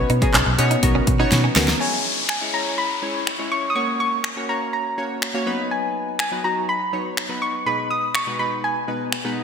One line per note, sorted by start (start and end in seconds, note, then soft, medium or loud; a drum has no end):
0.00 0.11 B3 medium
0.00 0.11 C#4 medium
0.00 0.11 D#4 medium
0.00 0.11 F#4 medium
0.00 1.28 B4 medium
0.00 0.12 C#5 medium
0.10 0.26 B2 loud
0.10 0.18 D#4 medium
0.10 closed hi-hat medium
0.22 0.48 B3 medium
0.22 0.48 C#4 medium
0.22 0.48 D#4 medium
0.22 0.48 F#4 medium
0.22 0.48 G#4 medium
0.22 muted clean electric guitar stroke soft
0.22 kick medium
0.22 closed hi-hat soft
0.34 0.42 B1 loud
0.34 0.43 C#4 medium
0.34 clap loud
0.34 closed hi-hat medium
0.46 0.54 B1 loud
0.46 muted clean electric guitar stroke soft
0.58 0.74 B2 loud
0.58 0.76 B3 medium
0.58 0.76 C#4 medium
0.58 0.76 D#4 medium
0.58 0.76 F#4 medium
0.58 0.76 C#5 loud
0.58 closed hi-hat medium
0.71 0.79 D#4 medium
0.71 closed hi-hat medium
0.83 0.99 B1 loud
0.83 1.09 B3 medium
0.83 1.09 C#4 medium
0.83 1.09 D#4 medium
0.83 1.09 F#4 medium
0.83 1.09 A#4 loud
0.83 kick medium
0.83 closed hi-hat loud
0.95 1.04 C#4 medium
1.07 1.23 B2 loud
1.07 muted clean electric guitar stroke soft
1.07 kick medium
1.07 closed hi-hat medium
1.19 1.45 B3 loud
1.19 1.45 C#4 medium
1.19 1.45 D#4 medium
1.19 1.28 D#4 medium
1.19 1.46 F#4 medium
1.19 1.46 C#5 loud
1.32 1.48 B2 loud
1.32 muted clean electric guitar stroke soft
1.32 snare medium
1.32 closed hi-hat medium
1.44 1.52 C#4 medium
1.56 1.72 D2 loud
1.56 1.73 B3 medium
1.56 1.64 B3 medium
1.56 1.73 C#4 medium
1.56 1.74 D#4 medium
1.56 1.74 F#4 medium
1.56 1.74 A#4 loud
1.56 snare loud
1.56 open hi-hat medium
1.68 snare loud
1.80 2.24 G#3 medium
1.80 2.24 C#4 medium
1.80 2.24 E4 medium
1.80 2.24 C#5 medium
1.80 2.28 G#5 medium
1.80 downlifter medium
2.29 2.55 G#5 medium
2.29 finger snap loud
2.41 2.50 G#3 medium
2.41 2.50 C#4 medium
2.41 2.50 E4 medium
2.41 2.50 C#5 medium
2.53 2.88 G#3 medium
2.53 2.88 C#4 medium
2.53 2.88 E4 medium
2.53 2.88 C#5 medium
2.53 2.79 A#5 medium
2.78 3.53 B5 medium
3.02 3.28 G#3 medium
3.02 3.29 C#4 medium
3.02 3.29 E4 medium
3.02 3.29 C#5 medium
3.27 finger snap loud
3.39 3.65 G#3 medium
3.39 3.65 C#4 medium
3.39 3.65 E4 medium
3.39 3.65 C#5 medium
3.52 3.68 C#6 loud
3.70 3.76 D#6 medium
3.75 4.19 A#3 medium
3.75 4.19 C#4 medium
3.75 4.19 F#4 medium
3.75 4.19 C#5 medium
3.75 3.99 C#6 loud
4.00 4.50 C#6 loud
4.24 finger snap loud
4.36 4.45 A#3 medium
4.36 4.45 C#4 medium
4.36 4.45 F#4 medium
4.36 4.45 C#5 medium
4.49 4.83 A#3 medium
4.49 4.83 C#4 medium
4.49 4.84 F#4 medium
4.49 4.84 C#5 medium
4.49 4.72 A#5 medium
4.73 5.42 A#5 medium
4.98 5.24 A#3 medium
4.98 5.24 C#4 medium
4.98 5.24 F#4 medium
4.98 5.24 C#5 medium
5.22 finger snap loud
5.34 5.46 A#3 medium
5.34 5.46 C#4 medium
5.34 5.47 F#4 medium
5.34 5.47 C#5 loud
5.46 6.15 F#3 medium
5.46 6.15 B3 medium
5.46 6.15 D#4 medium
5.46 6.15 B4 loud
5.71 6.18 G#5 medium
6.19 6.45 G#5 medium
6.19 finger snap loud
6.32 6.40 F#3 medium
6.32 6.40 B3 medium
6.32 6.41 D#4 medium
6.32 6.41 B4 medium
6.44 6.79 F#3 medium
6.44 6.79 B3 medium
6.44 6.79 D#4 medium
6.44 6.79 F#4 medium
6.44 6.69 A#5 medium
6.69 7.44 B5 medium
6.93 7.19 F#3 medium
6.93 7.19 B3 medium
6.93 7.19 D#4 medium
6.93 7.19 C#5 medium
7.17 finger snap loud
7.29 7.55 F#3 medium
7.29 7.55 B3 medium
7.29 7.55 D#4 medium
7.29 7.55 B4 medium
7.42 7.67 C#6 medium
7.66 8.09 B2 medium
7.66 8.09 G#3 medium
7.66 8.09 B3 medium
7.66 8.09 D#4 medium
7.66 8.09 B4 medium
7.66 7.91 B5 loud
7.91 8.16 D#6 loud
8.15 8.40 C#6 medium
8.15 finger snap loud
8.27 8.35 B2 medium
8.27 8.36 G#3 medium
8.27 8.36 B3 medium
8.27 8.36 D#4 medium
8.27 8.36 B4 medium
8.39 8.74 B2 medium
8.39 8.74 G#3 medium
8.39 8.74 B3 medium
8.39 8.74 D#4 medium
8.39 8.74 B4 medium
8.39 8.62 B5 loud
8.64 9.33 G#5 medium
8.88 9.14 B2 medium
8.88 9.14 G#3 medium
8.88 9.14 B3 medium
8.88 9.14 D#4 medium
8.88 9.14 B4 medium
9.12 finger snap loud
9.24 9.44 B2 medium
9.24 9.44 G#3 medium
9.24 9.44 B3 medium
9.24 9.44 D#4 medium
9.24 9.44 B4 medium